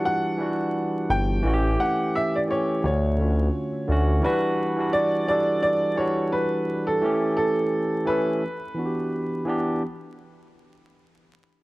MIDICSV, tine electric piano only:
0, 0, Header, 1, 2, 480
1, 0, Start_track
1, 0, Tempo, 697674
1, 992, Time_signature, 4, 2, 24, 8
1, 8003, End_track
2, 0, Start_track
2, 0, Title_t, "Tine electric piano"
2, 0, Program_c, 0, 4
2, 0, Control_c, 0, 64, 127
2, 0, Note_on_c, 0, 52, 74
2, 0, Note_on_c, 0, 55, 65
2, 0, Note_on_c, 0, 62, 76
2, 0, Note_on_c, 0, 65, 59
2, 0, Note_on_c, 0, 66, 74
2, 0, Note_on_c, 0, 67, 72
2, 140, Note_off_c, 0, 52, 0
2, 144, Note_off_c, 0, 55, 0
2, 150, Note_off_c, 0, 62, 0
2, 177, Note_off_c, 0, 66, 0
2, 259, Note_on_c, 0, 52, 68
2, 271, Note_on_c, 0, 55, 66
2, 279, Note_on_c, 0, 62, 66
2, 291, Note_on_c, 0, 66, 76
2, 777, Note_off_c, 0, 52, 0
2, 783, Note_off_c, 0, 55, 0
2, 787, Note_off_c, 0, 62, 0
2, 793, Note_off_c, 0, 66, 0
2, 981, Note_on_c, 0, 52, 90
2, 992, Note_on_c, 0, 57, 87
2, 1002, Control_c, 0, 64, 0
2, 1003, Note_off_c, 0, 65, 0
2, 1003, Note_on_c, 0, 61, 85
2, 1005, Note_off_c, 0, 67, 0
2, 1013, Note_on_c, 0, 66, 92
2, 1053, Note_off_c, 0, 66, 0
2, 1057, Note_on_c, 0, 67, 118
2, 1114, Control_c, 0, 64, 127
2, 1498, Note_off_c, 0, 52, 0
2, 1503, Note_off_c, 0, 57, 0
2, 1509, Note_off_c, 0, 61, 0
2, 1536, Note_off_c, 0, 67, 0
2, 1703, Note_on_c, 0, 52, 68
2, 1712, Note_on_c, 0, 57, 67
2, 1724, Note_on_c, 0, 61, 64
2, 1733, Note_on_c, 0, 67, 74
2, 1947, Note_off_c, 0, 52, 0
2, 1952, Note_off_c, 0, 57, 0
2, 1958, Note_off_c, 0, 61, 0
2, 1962, Note_off_c, 0, 67, 0
2, 1962, Control_c, 0, 64, 0
2, 2096, Control_c, 0, 64, 127
2, 2185, Note_on_c, 0, 50, 64
2, 2196, Note_on_c, 0, 57, 62
2, 2206, Note_on_c, 0, 61, 61
2, 2216, Note_on_c, 0, 65, 59
2, 2254, Note_off_c, 0, 65, 0
2, 2261, Note_on_c, 0, 66, 70
2, 2539, Note_off_c, 0, 50, 0
2, 2545, Note_off_c, 0, 57, 0
2, 2550, Note_off_c, 0, 61, 0
2, 2578, Note_off_c, 0, 66, 0
2, 2666, Note_on_c, 0, 50, 87
2, 2676, Note_on_c, 0, 57, 78
2, 2687, Note_on_c, 0, 61, 82
2, 2696, Note_on_c, 0, 66, 103
2, 2847, Note_off_c, 0, 50, 0
2, 2852, Note_off_c, 0, 57, 0
2, 2858, Note_off_c, 0, 61, 0
2, 2862, Note_off_c, 0, 66, 0
2, 2897, Note_on_c, 0, 52, 101
2, 2907, Note_on_c, 0, 55, 101
2, 2919, Control_c, 0, 64, 0
2, 2919, Note_on_c, 0, 62, 90
2, 2929, Note_on_c, 0, 66, 125
2, 3028, Control_c, 0, 64, 127
2, 3160, Note_off_c, 0, 52, 0
2, 3165, Note_off_c, 0, 55, 0
2, 3171, Note_off_c, 0, 62, 0
2, 3176, Note_off_c, 0, 66, 0
2, 3276, Note_on_c, 0, 52, 74
2, 3286, Note_on_c, 0, 55, 60
2, 3296, Note_on_c, 0, 62, 63
2, 3305, Note_on_c, 0, 66, 76
2, 3534, Note_off_c, 0, 52, 0
2, 3539, Note_off_c, 0, 55, 0
2, 3544, Note_off_c, 0, 62, 0
2, 3548, Note_off_c, 0, 66, 0
2, 3624, Note_on_c, 0, 52, 68
2, 3634, Note_on_c, 0, 55, 68
2, 3644, Note_on_c, 0, 62, 69
2, 3655, Note_on_c, 0, 69, 84
2, 3979, Note_off_c, 0, 52, 0
2, 3984, Note_off_c, 0, 55, 0
2, 3989, Note_off_c, 0, 62, 0
2, 3995, Note_off_c, 0, 69, 0
2, 4099, Note_on_c, 0, 52, 67
2, 4110, Note_on_c, 0, 55, 71
2, 4121, Note_on_c, 0, 62, 64
2, 4131, Note_on_c, 0, 66, 82
2, 4617, Note_off_c, 0, 52, 0
2, 4622, Note_off_c, 0, 55, 0
2, 4628, Note_off_c, 0, 62, 0
2, 4633, Note_off_c, 0, 66, 0
2, 4824, Note_on_c, 0, 52, 89
2, 4833, Note_on_c, 0, 57, 90
2, 4841, Control_c, 0, 64, 0
2, 4844, Note_on_c, 0, 61, 94
2, 4853, Note_on_c, 0, 67, 96
2, 4951, Control_c, 0, 64, 127
2, 5340, Note_off_c, 0, 52, 0
2, 5344, Note_off_c, 0, 57, 0
2, 5349, Note_off_c, 0, 61, 0
2, 5354, Note_off_c, 0, 67, 0
2, 5539, Note_on_c, 0, 52, 71
2, 5549, Note_on_c, 0, 57, 73
2, 5559, Note_on_c, 0, 61, 70
2, 5570, Note_on_c, 0, 69, 88
2, 5785, Note_off_c, 0, 52, 0
2, 5791, Note_off_c, 0, 57, 0
2, 5795, Note_off_c, 0, 61, 0
2, 5800, Control_c, 0, 64, 0
2, 5801, Note_off_c, 0, 69, 0
2, 5912, Control_c, 0, 64, 127
2, 6018, Note_on_c, 0, 52, 67
2, 6028, Note_on_c, 0, 59, 54
2, 6039, Note_on_c, 0, 62, 55
2, 6048, Note_on_c, 0, 66, 60
2, 6091, Note_off_c, 0, 66, 0
2, 6093, Note_on_c, 0, 67, 68
2, 6376, Note_off_c, 0, 52, 0
2, 6381, Note_off_c, 0, 59, 0
2, 6387, Note_off_c, 0, 62, 0
2, 6413, Note_off_c, 0, 67, 0
2, 6502, Note_on_c, 0, 52, 82
2, 6512, Note_on_c, 0, 59, 79
2, 6522, Note_on_c, 0, 62, 83
2, 6531, Note_on_c, 0, 67, 85
2, 6685, Note_off_c, 0, 52, 0
2, 6690, Note_off_c, 0, 59, 0
2, 6695, Note_off_c, 0, 62, 0
2, 6700, Note_off_c, 0, 67, 0
2, 6761, Control_c, 0, 64, 0
2, 8003, End_track
0, 0, End_of_file